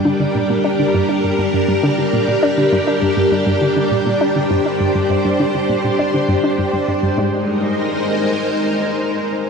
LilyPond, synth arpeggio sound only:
\new Staff \with { instrumentName = "Synth arpeggio sound" } { \clef bass \time 4/4 \key g \phrygian \tempo 4 = 101 d16 d16 bes,16 bes,16 d'16 d16 g,16 d'16 g,16 g,16 g,16 g,16 d16 d16 bes,16 bes,16 | d'16 d16 g,16 d'16 g,16 g,16 g,16 g,16 d16 d16 bes,16 bes,16 d'16 d16 g,16 d'16 | g,16 g,16 g,16 g,16 d16 d16 bes,16 bes,16 d'16 d16 g,16 d'16 g,16 g,16 g,16 g,16 | aes,8 r2. r8 | }